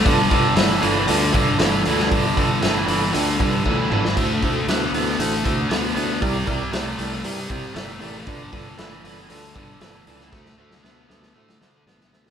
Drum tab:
CC |----------------|----------------|x---------------|----------------|
HH |o-o-o-o-o-o-o-o-|o-o-o-o-o-o-----|o-o-o-o-o-o-o-o-|o-o-o-o-o-o-o-o-|
SD |----o-------o--o|----o----------o|----o-------o---|----o-------o---|
T2 |----------------|--------------o-|----------------|----------------|
BD |o-o-------o-----|o-o-------o-o---|o-o-------o-----|o-o-------o-----|

CC |----------------|----------------|
HH |o-o-o-o-o-o-o-o-|----------------|
SD |----o-------o--o|oo-oo-oo-oo-oooo|
T2 |----------------|----------------|
BD |o-o-------o-----|o---------------|